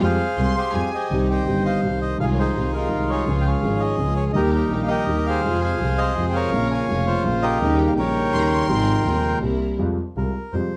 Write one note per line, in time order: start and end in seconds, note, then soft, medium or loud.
0.00 0.16 F2 medium
0.00 0.16 F3 medium
0.00 0.16 G3 medium
0.00 0.15 G#3 medium
0.00 0.16 G#3 medium
0.00 0.16 C4 medium
0.00 0.16 F4 medium
0.00 0.16 G4 medium
0.00 0.56 G#4 medium
0.04 0.55 C5 medium
0.04 0.90 F5 medium
0.35 0.53 C2 medium
0.35 0.53 C2 soft
0.35 0.53 C3 medium
0.35 0.52 G3 soft
0.35 0.52 G#3 soft
0.35 0.52 F4 soft
0.35 0.71 C6 medium
0.57 0.93 G4 soft
0.57 1.08 G#4 soft
0.57 0.90 C5 medium
0.72 0.89 F2 soft
0.72 0.90 F2 medium
0.72 0.89 F3 soft
0.72 0.88 G3 soft
0.72 0.89 G#3 soft
0.72 0.89 F4 soft
0.72 1.11 G#5 medium
0.94 1.45 G4 medium
0.94 1.30 C5 medium
0.94 1.27 D#5 medium
1.10 1.45 C2 medium
1.10 1.46 C2 soft
1.10 1.46 C3 medium
1.10 1.45 D#3 soft
1.10 1.44 G3 medium
1.10 1.46 G3 soft
1.10 1.45 C4 soft
1.10 1.46 C4 soft
1.10 1.45 D#4 medium
1.14 1.47 G4 soft
1.30 1.66 C5 soft
1.30 1.81 D#5 medium
1.30 1.63 G5 medium
1.46 1.81 G1 soft
1.46 1.82 G1 soft
1.46 1.82 G2 soft
1.46 1.81 D#3 soft
1.46 1.81 G3 soft
1.46 1.82 G3 soft
1.46 1.81 C4 soft
1.46 1.82 C4 soft
1.46 1.81 D#4 soft
1.51 1.83 G4 soft
1.66 2.17 C5 medium
1.66 1.99 F5 medium
1.82 2.18 C2 soft
1.82 2.18 C3 soft
1.82 2.17 D#3 soft
1.82 2.17 G3 soft
1.82 2.18 G3 soft
1.82 2.17 C4 soft
1.82 2.18 C4 soft
1.82 2.17 D#4 soft
1.86 2.19 G4 soft
2.02 2.18 D#5 medium
2.18 2.54 C2 medium
2.18 2.54 C3 medium
2.18 2.53 D#3 soft
2.18 2.53 G#3 medium
2.18 2.54 G#3 soft
2.18 2.54 C4 soft
2.18 2.53 D#4 medium
2.18 2.53 F4 medium
2.18 2.25 F5 medium
2.22 2.55 F4 medium
2.22 2.39 G#4 medium
2.33 2.39 C#5 medium
2.39 2.75 D#4 medium
2.39 2.89 G#4 medium
2.39 2.72 C5 medium
2.54 2.90 C2 soft
2.54 2.90 C3 soft
2.54 2.87 D#3 soft
2.54 2.88 G#3 soft
2.54 2.89 G#3 soft
2.54 2.90 C4 soft
2.54 2.88 D#4 soft
2.54 2.89 F4 soft
2.59 2.91 F4 soft
2.74 3.25 D#4 medium
2.74 3.10 F4 medium
2.74 3.11 A#4 medium
2.89 3.25 C2 soft
2.89 3.26 C2 soft
2.89 3.25 C3 soft
2.89 3.24 D#3 soft
2.89 3.24 G#3 soft
2.89 3.25 G#3 soft
2.89 3.26 C4 soft
2.89 3.24 D#4 soft
2.89 3.24 F4 soft
2.93 3.26 F4 soft
3.10 3.61 F4 medium
3.10 3.46 G#4 medium
3.10 3.36 C#5 medium
3.25 3.61 C#2 medium
3.25 3.62 C#2 medium
3.25 3.62 C#3 medium
3.25 3.60 F3 soft
3.25 3.60 G#3 medium
3.25 3.61 G#3 soft
3.25 3.60 C#4 medium
3.25 3.62 C#4 soft
3.25 3.60 F4 medium
3.30 3.63 G#4 medium
3.41 3.82 F5 medium
3.41 3.47 G5 medium
3.47 3.80 G#4 medium
3.47 3.96 C#5 medium
3.61 3.97 G#1 soft
3.61 3.97 G#2 soft
3.61 3.95 F3 soft
3.61 3.96 G#3 soft
3.61 3.97 G#3 soft
3.61 3.97 C#4 soft
3.61 3.98 C#4 soft
3.61 3.97 F4 soft
3.65 3.98 G#4 soft
3.80 4.32 G#4 medium
3.80 4.14 D#5 medium
3.97 4.33 C#2 soft
3.97 4.33 C#3 soft
3.97 4.32 F3 soft
3.97 4.33 G#3 soft
3.97 4.33 C#4 soft
3.97 4.34 C#4 soft
3.97 4.33 F4 soft
3.97 4.34 G#4 soft
4.16 4.25 C#5 medium
4.33 4.69 D#2 medium
4.33 4.70 D#2 medium
4.33 4.68 D#3 medium
4.33 4.69 G3 soft
4.33 4.69 A#3 medium
4.33 4.70 A#3 soft
4.33 4.69 D#4 medium
4.33 4.69 G4 medium
4.33 4.53 G4 medium
4.33 4.70 G4 medium
4.33 4.51 A#4 medium
4.33 4.42 D#5 medium
4.52 5.05 D#4 medium
4.52 4.89 G4 medium
4.52 4.83 A#4 medium
4.69 5.06 A#1 soft
4.69 5.06 A#2 soft
4.69 5.05 D#3 soft
4.69 5.06 G3 soft
4.69 5.05 A#3 soft
4.69 5.06 A#3 soft
4.69 5.06 D#4 soft
4.69 5.05 G4 soft
4.69 5.07 G4 soft
4.82 4.90 F5 medium
4.88 5.41 G4 medium
4.88 5.41 A#4 medium
4.88 5.27 D#5 medium
5.06 5.42 D#2 soft
5.06 5.43 D#2 soft
5.06 5.43 D#3 soft
5.06 5.43 G3 soft
5.06 5.42 A#3 soft
5.06 5.43 A#3 soft
5.06 5.42 D#4 soft
5.06 5.42 G4 soft
5.10 5.44 G4 soft
5.26 5.79 G#4 medium
5.26 5.63 C5 medium
5.26 5.60 F5 medium
5.43 5.79 F2 medium
5.43 5.78 C3 soft
5.43 5.79 F3 medium
5.43 5.80 G#3 soft
5.43 5.78 C4 medium
5.43 5.78 F4 medium
5.43 5.78 G#4 medium
5.47 5.81 F4 medium
5.61 6.00 C5 medium
5.61 6.14 F5 medium
5.61 6.00 G#5 medium
5.79 6.15 C2 soft
5.79 6.16 C2 soft
5.79 6.14 C3 soft
5.79 6.15 F3 soft
5.79 6.16 G#3 soft
5.79 6.15 C4 soft
5.79 6.15 F4 soft
5.79 6.15 G#4 soft
5.83 6.17 F4 soft
5.98 6.51 G#4 medium
5.98 6.51 C5 medium
5.98 6.26 D#5 medium
6.16 6.51 F2 soft
6.16 6.52 F2 soft
6.16 6.51 C3 soft
6.16 6.52 F3 soft
6.16 6.52 G#3 soft
6.16 6.51 C4 soft
6.16 6.50 F4 soft
6.16 6.53 F4 soft
6.16 6.51 G#4 soft
6.29 6.36 G5 medium
6.33 6.86 A#4 medium
6.33 6.72 C#5 medium
6.33 6.68 F5 loud
6.51 6.87 A#1 medium
6.51 6.88 A#1 medium
6.51 6.88 A#2 medium
6.51 6.86 C#3 medium
6.51 6.88 F3 soft
6.51 6.88 A#3 soft
6.51 6.87 C#4 medium
6.51 6.87 F4 medium
6.51 6.87 A#4 medium
6.56 6.89 F4 medium
6.71 7.23 C#5 medium
6.71 7.23 F5 medium
6.71 7.05 G#5 medium
6.88 7.24 F1 soft
6.88 7.24 F2 soft
6.88 7.22 C#3 soft
6.88 7.24 F3 soft
6.88 7.24 A#3 soft
6.88 7.23 C#4 soft
6.88 7.24 F4 soft
6.88 7.24 A#4 soft
6.92 7.25 F4 soft
7.07 7.59 F4 medium
7.07 7.45 C5 medium
7.23 7.60 A#1 medium
7.23 7.60 A#1 soft
7.23 7.60 A#2 soft
7.23 7.59 C#3 soft
7.23 7.60 F3 soft
7.23 7.60 A#3 soft
7.23 7.59 C#4 soft
7.23 7.60 F4 soft
7.23 7.61 F4 soft
7.23 7.60 A#4 soft
7.42 7.94 G4 medium
7.42 7.94 A#4 medium
7.42 7.80 D#5 loud
7.60 7.96 D#2 medium
7.60 7.95 C#3 medium
7.60 7.96 D#3 medium
7.60 7.96 G3 medium
7.60 7.96 A#3 medium
7.60 7.95 C#4 medium
7.60 7.95 D#4 medium
7.60 7.95 G4 medium
7.64 7.97 D#4 medium
7.78 7.82 G5 medium
7.87 7.91 F5 medium
7.96 8.31 A#1 medium
7.96 8.32 A#1 soft
7.96 8.32 A#2 soft
7.96 8.31 C#3 soft
7.96 8.32 G3 soft
7.96 8.32 A#3 soft
7.96 8.30 C#4 soft
7.96 8.31 D#4 soft
7.96 8.31 G4 soft
7.96 9.39 A#4 medium
7.96 8.67 C#5 medium
7.96 9.38 G5 medium
8.01 8.33 D#4 soft
8.31 8.68 D#2 medium
8.31 8.69 D#2 soft
8.31 8.67 C#3 soft
8.31 8.69 D#3 soft
8.31 8.68 G3 soft
8.31 8.67 C#4 soft
8.31 8.67 D#4 soft
8.31 8.67 G4 soft
8.31 8.42 C6 loud
8.35 8.69 A#3 soft
8.35 8.69 D#4 soft
8.41 8.51 A#5 medium
8.50 9.23 C6 loud
8.68 9.04 G#1 medium
8.68 9.04 G#2 medium
8.68 9.02 C3 medium
8.68 9.03 F3 soft
8.68 9.04 G#3 medium
8.68 9.03 C4 medium
8.68 9.03 F4 medium
8.68 9.03 G#4 medium
8.72 9.05 D#4 medium
9.03 9.41 D#1 soft
9.03 9.40 D#2 medium
9.03 9.41 D#2 soft
9.03 9.39 C3 soft
9.03 9.40 F3 soft
9.03 9.41 G#3 soft
9.03 9.40 C4 soft
9.03 9.40 F4 soft
9.03 9.40 G#4 soft
9.08 9.42 D#4 soft
9.40 9.78 C2 soft
9.40 9.42 C3 soft
9.40 9.77 C3 soft
9.40 9.77 G3 soft
9.40 9.78 A#3 soft
9.40 9.77 C4 soft
9.40 9.77 E4 soft
9.40 9.77 A#4 soft
9.44 9.79 E4 soft
9.79 9.95 F2 medium
9.79 9.95 C3 soft
9.79 9.95 F3 medium
9.79 9.95 G3 soft
9.79 9.95 G#3 soft
9.79 9.95 F4 soft
10.16 10.32 C2 soft
10.16 10.33 C2 soft
10.16 10.33 C3 soft
10.16 10.32 G3 soft
10.16 10.32 G#3 soft
10.16 10.32 F4 soft
10.16 10.55 A#4 medium
10.53 10.69 F2 soft
10.53 10.70 F2 soft
10.53 10.70 C3 soft
10.53 10.70 F3 soft
10.53 10.70 G3 soft
10.53 10.70 G#3 soft
10.53 10.70 F4 soft
10.53 10.77 C5 medium